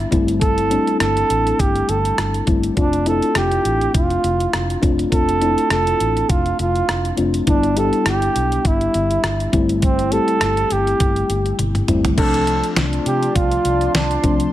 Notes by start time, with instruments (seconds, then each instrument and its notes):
Already playing: fm electric piano G3 B3 D4 E4
0.11 fingered electric bass G1, fm electric piano G3 A3 C4 E4, kick, closed hi-hat
0.28 closed hi-hat
0.41 flugelhorn A4, kick, closed hi-hat
0.58 closed hi-hat
0.70 fm electric piano G3 A3 C4 D4, closed hi-hat
0.87 closed hi-hat
1.00 fingered electric bass G1, flugelhorn A4, cross-stick, closed hi-hat
1.17 closed hi-hat
1.30 fingered electric bass A1, closed hi-hat
1.47 closed hi-hat
1.59 fingered electric bass G1, flugelhorn G4, kick, closed hi-hat
1.76 closed hi-hat
1.89 fingered electric bass G1, flugelhorn A4, closed hi-hat
2.05 closed hi-hat
2.18 fingered electric bass G1, cross-stick, closed hi-hat
2.34 closed hi-hat
2.47 fingered electric bass G1, fm electric piano G3 A3 C4 E4, kick, closed hi-hat
2.63 closed hi-hat
2.77 fingered electric bass F1, fm electric piano A3 C4 D4 F4, flugelhorn D4, kick, closed hi-hat
2.93 closed hi-hat
3.06 fm electric piano A3 C4 D4 E4, flugelhorn A4, closed hi-hat
3.22 closed hi-hat
3.35 fingered electric bass F1, flugelhorn G4, cross-stick, closed hi-hat
3.52 closed hi-hat
3.65 fingered electric bass A1, closed hi-hat
3.81 closed hi-hat
3.94 fingered electric bass F1, flugelhorn F4, kick, closed hi-hat
4.10 closed hi-hat
4.24 fingered electric bass F1, closed hi-hat
4.40 closed hi-hat
4.53 fingered electric bass F1, cross-stick, closed hi-hat
4.70 closed hi-hat
4.82 fingered electric bass F1, fm electric piano A3 C4 D4 F4, kick, closed hi-hat
4.99 closed hi-hat
5.11 fingered electric bass F1, fm electric piano A3 C4 D4 F4, flugelhorn A4, kick, closed hi-hat
5.29 closed hi-hat
5.41 fm electric piano A3 C4 D4 E4, closed hi-hat
5.58 closed hi-hat
5.70 fingered electric bass F1, flugelhorn A4, cross-stick, closed hi-hat
5.87 closed hi-hat
6.00 fingered electric bass A1, closed hi-hat
6.17 closed hi-hat
6.29 fingered electric bass F1, flugelhorn F4, kick, closed hi-hat
6.46 closed hi-hat
6.59 fingered electric bass F1, flugelhorn F4, closed hi-hat
6.75 closed hi-hat
6.89 fingered electric bass F1, cross-stick, closed hi-hat
7.05 closed hi-hat
7.17 fingered electric bass F1, fm electric piano A3 C4 D4 F4, closed hi-hat
7.34 closed hi-hat
7.46 fingered electric bass G1, fm electric piano G3 B3 D4 E4, flugelhorn D4, kick, closed hi-hat
7.63 closed hi-hat
7.76 fm electric piano G3 B3 D4 G4, flugelhorn A4, closed hi-hat
7.93 closed hi-hat
8.06 fingered electric bass G1, flugelhorn G4, cross-stick, closed hi-hat
8.22 closed hi-hat
8.36 fingered electric bass B1, closed hi-hat
8.52 closed hi-hat
8.65 fingered electric bass G1, flugelhorn E4, kick, closed hi-hat
8.81 closed hi-hat
8.94 fingered electric bass G1, closed hi-hat
9.11 closed hi-hat
9.24 fingered electric bass G1, cross-stick, closed hi-hat
9.40 closed hi-hat
9.52 fingered electric bass G1, fm electric piano G3 A3 C4 E4, kick, closed hi-hat
9.69 closed hi-hat
9.82 flugelhorn C4, kick, closed hi-hat
9.99 closed hi-hat
10.12 fm electric piano G3 A3 C4 G4, flugelhorn A4, closed hi-hat
10.28 closed hi-hat
10.41 fingered electric bass G1, cross-stick, closed hi-hat
10.57 closed hi-hat
10.70 fingered electric bass G1, flugelhorn G4, closed hi-hat
10.87 closed hi-hat
11.00 fingered electric bass G1, kick, closed hi-hat
11.16 closed hi-hat
11.30 fingered electric bass G1, closed hi-hat
11.46 closed hi-hat
11.59 fingered electric bass G1, closed hi-hat, high tom
11.75 closed hi-hat, mid tom
11.88 fingered electric bass G1, fm electric piano G3 A3 C4 E4, closed hi-hat, mid tom
12.05 closed hi-hat, floor tom
12.17 fingered electric bass C2, fm electric piano F3 A3 C4 D4, analog synth pad F4 D5 A5 C6, flugelhorn A4, kick, closed hi-hat, crash
12.34 closed hi-hat
12.47 closed hi-hat
12.64 closed hi-hat
12.76 fingered electric bass C2, snare, closed hi-hat
12.93 closed hi-hat
13.06 fingered electric bass C3, flugelhorn G4, closed hi-hat
13.23 closed hi-hat
13.36 fingered electric bass C2, flugelhorn F4, kick, closed hi-hat
13.51 closed hi-hat
13.65 fingered electric bass C2, closed hi-hat
13.81 closed hi-hat
13.94 fingered electric bass C2, flugelhorn D4, snare, closed hi-hat
14.11 closed hi-hat
14.23 fingered electric bass C2, fm electric piano F3 A3 C4 D4, kick, closed hi-hat
14.40 closed hi-hat